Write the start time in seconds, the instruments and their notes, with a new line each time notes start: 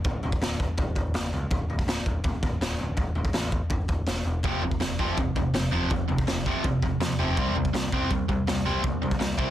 0.04 picked electric bass D1, kick, floor tom
0.23 picked electric bass D1, floor tom
0.32 kick
0.41 picked electric bass D1, snare, floor tom
0.60 kick, floor tom
0.78 picked electric bass D1, kick, floor tom
0.95 picked electric bass D1, kick, floor tom
1.14 picked electric bass F#1, snare, floor tom
1.33 picked electric bass C#2, floor tom
1.51 picked electric bass D1, kick, floor tom
1.69 picked electric bass D1, floor tom
1.79 kick
1.87 picked electric bass D1, snare, floor tom
2.06 picked electric bass D1, kick, floor tom
2.24 picked electric bass D1, kick, floor tom
2.43 picked electric bass D1, kick, floor tom
2.61 picked electric bass D1, snare, floor tom
2.79 picked electric bass D1, floor tom
2.97 picked electric bass D1, kick, floor tom
3.15 picked electric bass D1, floor tom
3.25 kick
3.33 picked electric bass A1, snare, floor tom
3.51 kick, floor tom
3.70 picked electric bass G1, kick, floor tom
3.88 picked electric bass D1, kick, floor tom
4.07 picked electric bass E1, snare, floor tom
4.25 picked electric bass E1, floor tom
4.43 picked electric bass F1, overdriven electric guitar F2 C3 F3, kick, floor tom
4.62 picked electric bass F1, overdriven electric guitar F2 C3, floor tom
4.71 kick
4.80 picked electric bass F1, overdriven electric guitar F2 C3, snare, floor tom
4.99 picked electric bass F1, overdriven electric guitar F2 C3 F3, kick, floor tom
5.17 picked electric bass F1, overdriven electric guitar F2 C3, kick, floor tom
5.36 picked electric bass F1, overdriven electric guitar F2 C3, kick, floor tom
5.54 picked electric bass F1, overdriven electric guitar F2 C3, snare, floor tom
5.71 picked electric bass F1, overdriven electric guitar F2 C3 F3, floor tom
5.90 picked electric bass F1, overdriven electric guitar F2 C3, kick, floor tom
6.08 picked electric bass F1, overdriven electric guitar F2 C3, floor tom
6.18 kick
6.27 picked electric bass F1, overdriven electric guitar F2 C3, snare, floor tom
6.46 overdriven electric guitar F2 C3 F3, kick, floor tom
6.64 picked electric bass F1, overdriven electric guitar F2 C3, kick, floor tom
6.82 picked electric bass F1, overdriven electric guitar F2 C3, kick, floor tom
7.00 picked electric bass F2, overdriven electric guitar F2 C3, snare, floor tom
7.19 picked electric bass F1, overdriven electric guitar F2 C3 F3, floor tom
7.37 picked electric bass C2, overdriven electric guitar C3 G3 C4, kick, floor tom
7.55 picked electric bass C2, overdriven electric guitar C3 G3, floor tom
7.65 kick
7.73 picked electric bass C2, overdriven electric guitar C3 G3, snare, floor tom
7.92 picked electric bass C2, overdriven electric guitar C3 G3 C4, kick, floor tom
8.11 picked electric bass C2, overdriven electric guitar C3 G3, kick, floor tom
8.29 picked electric bass C2, overdriven electric guitar C3 G3, kick, floor tom
8.47 picked electric bass C2, overdriven electric guitar C3 G3, snare, floor tom
8.66 picked electric bass C2, overdriven electric guitar C3 G3 C4, floor tom
8.83 picked electric bass C2, overdriven electric guitar C3 G3, kick, floor tom
9.02 picked electric bass C2, overdriven electric guitar C3 G3, floor tom
9.11 kick
9.19 picked electric bass C2, overdriven electric guitar C3 G3, snare, floor tom
9.38 overdriven electric guitar C3 G3 C4, kick, floor tom